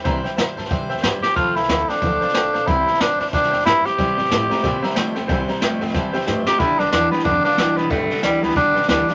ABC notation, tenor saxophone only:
X:1
M:4/4
L:1/8
Q:"Swing" 1/4=183
K:C
V:1 name="Tenor saxophone"
z6 z G | F E2 D4- D | E2 D D D2 E G- | G6- G z |
z6 z G | E D D B, D D2 B, | A,2 G, B, D2 D2 |]